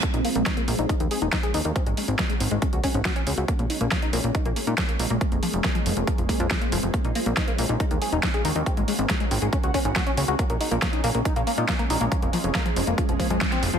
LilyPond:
<<
  \new Staff \with { instrumentName = "Ambient pad" } { \time 4/4 \key bes \minor \tempo 4 = 139 aes2 r2 | r2 des'2 | <aes bes>1 | <f c'>1 |
<bes des'>1 | r2 des'2 | <aes bes>1 | <f c'>1 | }
  \new Staff \with { instrumentName = "Synth arpeggio sound" } { \time 4/4 \key bes \minor bes16 ees'16 bes16 bes16 ees'16 bes16 bes16 ees'16 ees'16 ees'16 aes'16 ees'16 ees'16 aes'16 ees'16 ees'16 | c'16 aes16 aes16 c'16 aes16 aes16 c'16 aes16 des'16 ges'16 des'16 des'16 ges'16 des'16 des'16 ges'16 | bes16 bes16 ees'16 bes16 bes16 ees'16 bes16 bes16 ees'16 bes16 bes16 ees'16 bes16 bes16 ees'16 bes16 | f16 bes16 f16 f16 bes16 f16 f16 bes16 f16 f16 bes16 f16 f16 bes16 f16 f16 |
bes16 ees'16 bes16 bes16 ees'16 bes16 bes16 ees'16 ees'16 ees'16 aes'16 ees'16 r16 aes'16 ees'16 ees'16 | c'16 aes16 aes16 c'16 aes16 aes16 c'16 aes16 des'16 ges'16 des'16 des'16 ges'16 des'16 des'16 ges'16 | bes16 bes16 ees'16 bes16 bes16 ees'16 bes16 bes16 ees'16 bes16 bes16 ees'16 bes16 bes16 ees'16 bes16 | f16 bes16 f16 f16 bes16 f16 f16 bes16 f16 f16 f16 aes16 f16 c'16 f,16 f16 | }
  \new Staff \with { instrumentName = "Analog synth bass" } { \clef bass \time 4/4 \key bes \minor r16 bes,,16 r16 bes,,16 r8 bes,,16 bes,,16 r16 ees,16 r16 ees,,16 r8 ees,16 ees,16 | r16 aes,,16 r16 aes,,16 r8 aes,,16 aes,,16 r16 des,16 r16 aes,,16 r8 des,16 des,16 | r16 bes,,16 r16 bes,,16 r8 bes,,16 bes,,16 r16 bes,,16 r16 bes,16 r8 bes,,16 bes,,16 | r16 f,,16 r16 f,,16 r8 f,,16 f,,16 r16 f,,16 r16 f,16 r8 f,,16 f,,16 |
r16 bes,,16 r16 bes,,16 r8 bes,,16 bes,,16 r16 ees,16 r16 ees,,16 r8 ees,16 ees,16 | r16 aes,,16 r16 aes,,16 r8 aes,,16 aes,,16 r16 des,16 r16 aes,,16 r8 des,16 des,16 | r16 bes,,16 r16 bes,,16 r8 bes,,16 bes,,16 r16 bes,,16 r16 bes,16 r8 bes,,16 bes,,16 | r16 f,,16 r16 f,,16 r8 f,,16 f,,16 r16 f,,16 r16 f,16 r8 f,,16 f,,16 | }
  \new DrumStaff \with { instrumentName = "Drums" } \drummode { \time 4/4 <hh bd>16 hh16 hho16 hh16 <hh bd sn>16 hh16 hho16 hh16 <hh bd>16 hh16 hho16 hh16 <hh bd sn>16 hh16 hho16 hh16 | <hh bd>16 hh16 hho16 hh16 <hh bd sn>16 hh16 hho16 hh16 <hh bd>16 hh16 <hho bd>8 <hh bd sn>16 hh16 hho16 hh16 | <hh bd>16 hh16 hho16 hh16 <hh bd sn>16 hh16 hho16 hh16 <hh bd>16 hh16 hho16 hh16 <hh bd sn>16 hh16 hho8 | <hh bd>16 hh16 hho16 hh16 <hh bd sn>16 hh16 hho16 hh16 <hh bd>16 hh16 <hho bd>16 hh16 <hh bd sn>16 hh16 hho16 hh16 |
<hh bd>16 hh16 hho16 hh16 <hh bd sn>16 hh16 hho16 hh16 <hh bd>16 hh16 hho16 hh16 <hh bd sn>16 hh16 hho16 hh16 | <hh bd>16 hh16 hho16 hh16 <hh bd sn>16 hh16 hho16 hh16 <hh bd>16 hh16 <hho bd>16 hh16 <hh bd sn>16 hh16 hho8 | <hh bd>16 hh16 hho16 hh16 <hh bd sn>16 hh16 hho16 hh16 <hh bd>16 hh16 hho16 hh16 <hh bd sn>16 hh16 hho16 hh16 | <hh bd>16 hh16 hho16 hh16 <hh bd sn>16 hh16 hho16 hh16 <hh bd>16 hh16 <hho bd>16 hh16 <hh bd sn>16 <hh sn>16 hho16 hh16 | }
>>